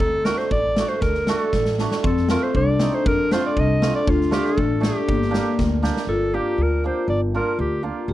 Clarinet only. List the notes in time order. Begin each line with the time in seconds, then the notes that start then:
Already playing: A4
0.25 A#4
0.38 C5
0.52 D5
0.89 C5
1.01 A#4
1.29 A4
2.07 A4
2.30 A#4
2.43 C5
2.56 D5
2.94 C5
3.07 A#4
3.32 C5
3.46 D5
3.60 D#5
3.95 D5
4.09 F4
4.33 G4
4.45 A4
4.82 G4
6.08 A4
6.34 G4
6.63 A#4
6.85 C5
7.09 D5
7.35 A#4
7.60 G4
7.84 F4